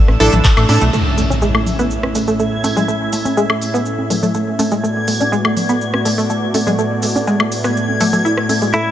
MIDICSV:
0, 0, Header, 1, 9, 480
1, 0, Start_track
1, 0, Key_signature, 3, "major"
1, 0, Tempo, 487805
1, 917, Time_signature, 4, 2, 24, 8
1, 8770, End_track
2, 0, Start_track
2, 0, Title_t, "Synth texture"
2, 0, Program_c, 0, 99
2, 0, Note_on_c, 0, 88, 88
2, 919, Note_on_c, 0, 92, 85
2, 928, Note_off_c, 0, 88, 0
2, 8770, Note_off_c, 0, 92, 0
2, 8770, End_track
3, 0, Start_track
3, 0, Title_t, "Clean electric guitar"
3, 0, Program_c, 1, 27
3, 8597, Note_on_c, 1, 64, 94
3, 8770, Note_off_c, 1, 64, 0
3, 8770, End_track
4, 0, Start_track
4, 0, Title_t, "Supersaw synth"
4, 0, Program_c, 2, 81
4, 197, Note_on_c, 2, 62, 98
4, 197, Note_on_c, 2, 64, 90
4, 197, Note_on_c, 2, 69, 109
4, 649, Note_off_c, 2, 69, 0
4, 650, Note_off_c, 2, 62, 0
4, 650, Note_off_c, 2, 64, 0
4, 678, Note_on_c, 2, 62, 88
4, 678, Note_on_c, 2, 64, 78
4, 678, Note_on_c, 2, 69, 87
4, 801, Note_off_c, 2, 62, 0
4, 801, Note_off_c, 2, 64, 0
4, 801, Note_off_c, 2, 69, 0
4, 8770, End_track
5, 0, Start_track
5, 0, Title_t, "Analog synth pad"
5, 0, Program_c, 3, 89
5, 0, Note_on_c, 3, 52, 81
5, 0, Note_on_c, 3, 57, 75
5, 0, Note_on_c, 3, 62, 86
5, 878, Note_off_c, 3, 52, 0
5, 878, Note_off_c, 3, 57, 0
5, 879, Note_off_c, 3, 62, 0
5, 917, Note_on_c, 3, 45, 76
5, 917, Note_on_c, 3, 57, 70
5, 917, Note_on_c, 3, 61, 71
5, 917, Note_on_c, 3, 64, 70
5, 917, Note_on_c, 3, 76, 80
5, 4719, Note_off_c, 3, 61, 0
5, 4719, Note_off_c, 3, 64, 0
5, 4719, Note_off_c, 3, 76, 0
5, 4758, Note_on_c, 3, 59, 73
5, 4758, Note_on_c, 3, 66, 69
5, 4759, Note_on_c, 3, 74, 88
5, 8559, Note_off_c, 3, 59, 0
5, 8559, Note_off_c, 3, 66, 0
5, 8560, Note_off_c, 3, 74, 0
5, 8596, Note_on_c, 3, 76, 82
5, 8597, Note_on_c, 3, 61, 71
5, 8597, Note_on_c, 3, 64, 72
5, 8770, Note_off_c, 3, 45, 0
5, 8770, Note_off_c, 3, 57, 0
5, 8770, Note_off_c, 3, 61, 0
5, 8770, Note_off_c, 3, 64, 0
5, 8770, Note_off_c, 3, 76, 0
5, 8770, End_track
6, 0, Start_track
6, 0, Title_t, "Synth pluck"
6, 0, Program_c, 4, 84
6, 197, Note_on_c, 4, 69, 107
6, 261, Note_off_c, 4, 69, 0
6, 321, Note_on_c, 4, 57, 78
6, 412, Note_off_c, 4, 57, 0
6, 437, Note_on_c, 4, 69, 107
6, 501, Note_off_c, 4, 69, 0
6, 561, Note_on_c, 4, 57, 105
6, 597, Note_off_c, 4, 57, 0
6, 677, Note_on_c, 4, 62, 76
6, 773, Note_off_c, 4, 62, 0
6, 801, Note_on_c, 4, 57, 78
6, 891, Note_off_c, 4, 57, 0
6, 917, Note_on_c, 4, 57, 83
6, 982, Note_off_c, 4, 57, 0
6, 1157, Note_on_c, 4, 57, 73
6, 1221, Note_off_c, 4, 57, 0
6, 1281, Note_on_c, 4, 61, 79
6, 1317, Note_off_c, 4, 61, 0
6, 1397, Note_on_c, 4, 56, 98
6, 1461, Note_off_c, 4, 56, 0
6, 1521, Note_on_c, 4, 57, 74
6, 1581, Note_off_c, 4, 57, 0
6, 1761, Note_on_c, 4, 59, 102
6, 1852, Note_off_c, 4, 59, 0
6, 2118, Note_on_c, 4, 57, 79
6, 2182, Note_off_c, 4, 57, 0
6, 2241, Note_on_c, 4, 57, 94
6, 2277, Note_off_c, 4, 57, 0
6, 2358, Note_on_c, 4, 57, 85
6, 2422, Note_off_c, 4, 57, 0
6, 2598, Note_on_c, 4, 57, 100
6, 2662, Note_off_c, 4, 57, 0
6, 2721, Note_on_c, 4, 56, 100
6, 2781, Note_off_c, 4, 56, 0
6, 2838, Note_on_c, 4, 57, 81
6, 2902, Note_off_c, 4, 57, 0
6, 3077, Note_on_c, 4, 57, 77
6, 3142, Note_off_c, 4, 57, 0
6, 3201, Note_on_c, 4, 61, 78
6, 3237, Note_off_c, 4, 61, 0
6, 3317, Note_on_c, 4, 56, 103
6, 3382, Note_off_c, 4, 56, 0
6, 3441, Note_on_c, 4, 57, 76
6, 3501, Note_off_c, 4, 57, 0
6, 3681, Note_on_c, 4, 59, 97
6, 3771, Note_off_c, 4, 59, 0
6, 4037, Note_on_c, 4, 57, 81
6, 4101, Note_off_c, 4, 57, 0
6, 4161, Note_on_c, 4, 57, 92
6, 4197, Note_off_c, 4, 57, 0
6, 4277, Note_on_c, 4, 57, 85
6, 4341, Note_off_c, 4, 57, 0
6, 4517, Note_on_c, 4, 57, 102
6, 4582, Note_off_c, 4, 57, 0
6, 4641, Note_on_c, 4, 56, 97
6, 4701, Note_off_c, 4, 56, 0
6, 4757, Note_on_c, 4, 57, 85
6, 4822, Note_off_c, 4, 57, 0
6, 4997, Note_on_c, 4, 57, 76
6, 5061, Note_off_c, 4, 57, 0
6, 5121, Note_on_c, 4, 62, 77
6, 5157, Note_off_c, 4, 62, 0
6, 5237, Note_on_c, 4, 56, 105
6, 5301, Note_off_c, 4, 56, 0
6, 5361, Note_on_c, 4, 57, 77
6, 5421, Note_off_c, 4, 57, 0
6, 5601, Note_on_c, 4, 59, 97
6, 5691, Note_off_c, 4, 59, 0
6, 5957, Note_on_c, 4, 57, 82
6, 6021, Note_off_c, 4, 57, 0
6, 6081, Note_on_c, 4, 57, 98
6, 6117, Note_off_c, 4, 57, 0
6, 6197, Note_on_c, 4, 57, 80
6, 6262, Note_off_c, 4, 57, 0
6, 6438, Note_on_c, 4, 57, 97
6, 6502, Note_off_c, 4, 57, 0
6, 6561, Note_on_c, 4, 56, 101
6, 6621, Note_off_c, 4, 56, 0
6, 6678, Note_on_c, 4, 57, 82
6, 6742, Note_off_c, 4, 57, 0
6, 6918, Note_on_c, 4, 57, 74
6, 6982, Note_off_c, 4, 57, 0
6, 7042, Note_on_c, 4, 62, 77
6, 7078, Note_off_c, 4, 62, 0
6, 7158, Note_on_c, 4, 56, 102
6, 7222, Note_off_c, 4, 56, 0
6, 7281, Note_on_c, 4, 57, 77
6, 7341, Note_off_c, 4, 57, 0
6, 7521, Note_on_c, 4, 59, 96
6, 7612, Note_off_c, 4, 59, 0
6, 7877, Note_on_c, 4, 57, 107
6, 7941, Note_off_c, 4, 57, 0
6, 8002, Note_on_c, 4, 57, 73
6, 8092, Note_off_c, 4, 57, 0
6, 8118, Note_on_c, 4, 64, 84
6, 8214, Note_off_c, 4, 64, 0
6, 8358, Note_on_c, 4, 57, 77
6, 8396, Note_off_c, 4, 57, 0
6, 8481, Note_on_c, 4, 56, 77
6, 8517, Note_off_c, 4, 56, 0
6, 8597, Note_on_c, 4, 57, 78
6, 8661, Note_off_c, 4, 57, 0
6, 8770, End_track
7, 0, Start_track
7, 0, Title_t, "Analog synth bass"
7, 0, Program_c, 5, 38
7, 81, Note_on_c, 5, 33, 88
7, 165, Note_off_c, 5, 33, 0
7, 197, Note_on_c, 5, 33, 102
7, 287, Note_off_c, 5, 33, 0
7, 321, Note_on_c, 5, 33, 97
7, 405, Note_off_c, 5, 33, 0
7, 561, Note_on_c, 5, 33, 91
7, 645, Note_off_c, 5, 33, 0
7, 677, Note_on_c, 5, 45, 101
7, 767, Note_off_c, 5, 45, 0
7, 801, Note_on_c, 5, 35, 92
7, 885, Note_off_c, 5, 35, 0
7, 8770, End_track
8, 0, Start_track
8, 0, Title_t, "Impact"
8, 0, Program_c, 6, 103
8, 918, Note_on_c, 6, 60, 75
8, 2838, Note_off_c, 6, 60, 0
8, 8770, End_track
9, 0, Start_track
9, 0, Title_t, "Drums"
9, 82, Note_on_c, 9, 37, 62
9, 82, Note_on_c, 9, 63, 70
9, 180, Note_off_c, 9, 37, 0
9, 180, Note_off_c, 9, 63, 0
9, 198, Note_on_c, 9, 46, 108
9, 199, Note_on_c, 9, 64, 73
9, 296, Note_off_c, 9, 46, 0
9, 297, Note_off_c, 9, 64, 0
9, 322, Note_on_c, 9, 42, 57
9, 322, Note_on_c, 9, 64, 91
9, 420, Note_off_c, 9, 42, 0
9, 420, Note_off_c, 9, 64, 0
9, 437, Note_on_c, 9, 36, 101
9, 438, Note_on_c, 9, 42, 85
9, 439, Note_on_c, 9, 39, 119
9, 536, Note_off_c, 9, 36, 0
9, 536, Note_off_c, 9, 42, 0
9, 537, Note_off_c, 9, 39, 0
9, 562, Note_on_c, 9, 42, 38
9, 562, Note_on_c, 9, 76, 81
9, 660, Note_off_c, 9, 42, 0
9, 660, Note_off_c, 9, 76, 0
9, 678, Note_on_c, 9, 46, 96
9, 678, Note_on_c, 9, 63, 96
9, 776, Note_off_c, 9, 46, 0
9, 777, Note_off_c, 9, 63, 0
9, 801, Note_on_c, 9, 42, 57
9, 900, Note_off_c, 9, 42, 0
9, 918, Note_on_c, 9, 49, 83
9, 920, Note_on_c, 9, 69, 33
9, 1016, Note_off_c, 9, 49, 0
9, 1018, Note_off_c, 9, 69, 0
9, 1158, Note_on_c, 9, 46, 107
9, 1160, Note_on_c, 9, 69, 82
9, 1256, Note_off_c, 9, 46, 0
9, 1258, Note_off_c, 9, 69, 0
9, 1282, Note_on_c, 9, 63, 99
9, 1292, Note_on_c, 9, 69, 52
9, 1380, Note_off_c, 9, 63, 0
9, 1390, Note_off_c, 9, 69, 0
9, 1394, Note_on_c, 9, 69, 36
9, 1492, Note_off_c, 9, 69, 0
9, 1522, Note_on_c, 9, 76, 74
9, 1620, Note_off_c, 9, 76, 0
9, 1637, Note_on_c, 9, 64, 78
9, 1638, Note_on_c, 9, 46, 88
9, 1640, Note_on_c, 9, 69, 88
9, 1736, Note_off_c, 9, 46, 0
9, 1736, Note_off_c, 9, 64, 0
9, 1739, Note_off_c, 9, 69, 0
9, 1762, Note_on_c, 9, 69, 47
9, 1861, Note_off_c, 9, 69, 0
9, 1876, Note_on_c, 9, 69, 41
9, 1975, Note_off_c, 9, 69, 0
9, 2001, Note_on_c, 9, 37, 61
9, 2001, Note_on_c, 9, 63, 65
9, 2099, Note_off_c, 9, 37, 0
9, 2099, Note_off_c, 9, 63, 0
9, 2116, Note_on_c, 9, 69, 93
9, 2118, Note_on_c, 9, 46, 102
9, 2215, Note_off_c, 9, 69, 0
9, 2216, Note_off_c, 9, 46, 0
9, 2238, Note_on_c, 9, 69, 51
9, 2337, Note_off_c, 9, 69, 0
9, 2357, Note_on_c, 9, 69, 39
9, 2455, Note_off_c, 9, 69, 0
9, 2597, Note_on_c, 9, 63, 88
9, 2598, Note_on_c, 9, 46, 92
9, 2598, Note_on_c, 9, 69, 93
9, 2695, Note_off_c, 9, 63, 0
9, 2696, Note_off_c, 9, 46, 0
9, 2696, Note_off_c, 9, 69, 0
9, 2721, Note_on_c, 9, 64, 80
9, 2724, Note_on_c, 9, 69, 51
9, 2819, Note_off_c, 9, 64, 0
9, 2822, Note_off_c, 9, 69, 0
9, 2839, Note_on_c, 9, 69, 37
9, 2937, Note_off_c, 9, 69, 0
9, 3075, Note_on_c, 9, 69, 84
9, 3078, Note_on_c, 9, 46, 112
9, 3174, Note_off_c, 9, 69, 0
9, 3176, Note_off_c, 9, 46, 0
9, 3200, Note_on_c, 9, 63, 92
9, 3200, Note_on_c, 9, 69, 55
9, 3299, Note_off_c, 9, 63, 0
9, 3299, Note_off_c, 9, 69, 0
9, 3319, Note_on_c, 9, 69, 40
9, 3417, Note_off_c, 9, 69, 0
9, 3441, Note_on_c, 9, 76, 73
9, 3540, Note_off_c, 9, 76, 0
9, 3557, Note_on_c, 9, 46, 86
9, 3561, Note_on_c, 9, 69, 86
9, 3656, Note_off_c, 9, 46, 0
9, 3659, Note_off_c, 9, 69, 0
9, 3687, Note_on_c, 9, 69, 52
9, 3786, Note_off_c, 9, 69, 0
9, 3795, Note_on_c, 9, 69, 41
9, 3893, Note_off_c, 9, 69, 0
9, 3921, Note_on_c, 9, 63, 64
9, 4019, Note_off_c, 9, 63, 0
9, 4037, Note_on_c, 9, 46, 112
9, 4037, Note_on_c, 9, 64, 77
9, 4041, Note_on_c, 9, 69, 83
9, 4135, Note_off_c, 9, 64, 0
9, 4136, Note_off_c, 9, 46, 0
9, 4140, Note_off_c, 9, 69, 0
9, 4161, Note_on_c, 9, 64, 92
9, 4163, Note_on_c, 9, 69, 53
9, 4259, Note_off_c, 9, 64, 0
9, 4261, Note_off_c, 9, 69, 0
9, 4275, Note_on_c, 9, 69, 42
9, 4373, Note_off_c, 9, 69, 0
9, 4517, Note_on_c, 9, 46, 93
9, 4517, Note_on_c, 9, 63, 88
9, 4520, Note_on_c, 9, 69, 98
9, 4615, Note_off_c, 9, 63, 0
9, 4616, Note_off_c, 9, 46, 0
9, 4618, Note_off_c, 9, 69, 0
9, 4638, Note_on_c, 9, 69, 51
9, 4736, Note_off_c, 9, 69, 0
9, 4766, Note_on_c, 9, 69, 39
9, 4864, Note_off_c, 9, 69, 0
9, 4994, Note_on_c, 9, 69, 96
9, 4997, Note_on_c, 9, 46, 111
9, 5092, Note_off_c, 9, 69, 0
9, 5096, Note_off_c, 9, 46, 0
9, 5121, Note_on_c, 9, 63, 88
9, 5121, Note_on_c, 9, 69, 47
9, 5219, Note_off_c, 9, 69, 0
9, 5220, Note_off_c, 9, 63, 0
9, 5242, Note_on_c, 9, 69, 33
9, 5340, Note_off_c, 9, 69, 0
9, 5361, Note_on_c, 9, 76, 76
9, 5460, Note_off_c, 9, 76, 0
9, 5477, Note_on_c, 9, 46, 87
9, 5477, Note_on_c, 9, 64, 83
9, 5480, Note_on_c, 9, 69, 85
9, 5575, Note_off_c, 9, 64, 0
9, 5576, Note_off_c, 9, 46, 0
9, 5578, Note_off_c, 9, 69, 0
9, 5600, Note_on_c, 9, 69, 53
9, 5698, Note_off_c, 9, 69, 0
9, 5720, Note_on_c, 9, 69, 38
9, 5818, Note_off_c, 9, 69, 0
9, 5841, Note_on_c, 9, 37, 62
9, 5841, Note_on_c, 9, 63, 61
9, 5940, Note_off_c, 9, 37, 0
9, 5940, Note_off_c, 9, 63, 0
9, 5957, Note_on_c, 9, 46, 109
9, 5959, Note_on_c, 9, 69, 82
9, 6056, Note_off_c, 9, 46, 0
9, 6058, Note_off_c, 9, 69, 0
9, 6088, Note_on_c, 9, 69, 56
9, 6186, Note_off_c, 9, 69, 0
9, 6198, Note_on_c, 9, 69, 45
9, 6296, Note_off_c, 9, 69, 0
9, 6437, Note_on_c, 9, 46, 98
9, 6437, Note_on_c, 9, 63, 85
9, 6442, Note_on_c, 9, 69, 93
9, 6536, Note_off_c, 9, 46, 0
9, 6536, Note_off_c, 9, 63, 0
9, 6541, Note_off_c, 9, 69, 0
9, 6561, Note_on_c, 9, 64, 87
9, 6562, Note_on_c, 9, 69, 54
9, 6659, Note_off_c, 9, 64, 0
9, 6661, Note_off_c, 9, 69, 0
9, 6679, Note_on_c, 9, 69, 38
9, 6777, Note_off_c, 9, 69, 0
9, 6910, Note_on_c, 9, 69, 85
9, 6917, Note_on_c, 9, 46, 111
9, 7009, Note_off_c, 9, 69, 0
9, 7016, Note_off_c, 9, 46, 0
9, 7041, Note_on_c, 9, 63, 87
9, 7045, Note_on_c, 9, 69, 49
9, 7139, Note_off_c, 9, 63, 0
9, 7144, Note_off_c, 9, 69, 0
9, 7157, Note_on_c, 9, 69, 37
9, 7256, Note_off_c, 9, 69, 0
9, 7281, Note_on_c, 9, 76, 79
9, 7379, Note_off_c, 9, 76, 0
9, 7398, Note_on_c, 9, 46, 92
9, 7398, Note_on_c, 9, 69, 87
9, 7496, Note_off_c, 9, 46, 0
9, 7496, Note_off_c, 9, 69, 0
9, 7521, Note_on_c, 9, 37, 55
9, 7522, Note_on_c, 9, 69, 53
9, 7619, Note_off_c, 9, 37, 0
9, 7621, Note_off_c, 9, 69, 0
9, 7644, Note_on_c, 9, 69, 42
9, 7742, Note_off_c, 9, 69, 0
9, 7761, Note_on_c, 9, 63, 57
9, 7859, Note_off_c, 9, 63, 0
9, 7877, Note_on_c, 9, 46, 110
9, 7877, Note_on_c, 9, 64, 78
9, 7877, Note_on_c, 9, 69, 89
9, 7975, Note_off_c, 9, 69, 0
9, 7976, Note_off_c, 9, 46, 0
9, 7976, Note_off_c, 9, 64, 0
9, 8000, Note_on_c, 9, 64, 87
9, 8000, Note_on_c, 9, 69, 53
9, 8099, Note_off_c, 9, 64, 0
9, 8099, Note_off_c, 9, 69, 0
9, 8124, Note_on_c, 9, 69, 39
9, 8222, Note_off_c, 9, 69, 0
9, 8241, Note_on_c, 9, 37, 57
9, 8339, Note_off_c, 9, 37, 0
9, 8357, Note_on_c, 9, 63, 83
9, 8358, Note_on_c, 9, 46, 90
9, 8360, Note_on_c, 9, 69, 97
9, 8455, Note_off_c, 9, 63, 0
9, 8456, Note_off_c, 9, 46, 0
9, 8458, Note_off_c, 9, 69, 0
9, 8479, Note_on_c, 9, 69, 56
9, 8577, Note_off_c, 9, 69, 0
9, 8593, Note_on_c, 9, 69, 35
9, 8691, Note_off_c, 9, 69, 0
9, 8770, End_track
0, 0, End_of_file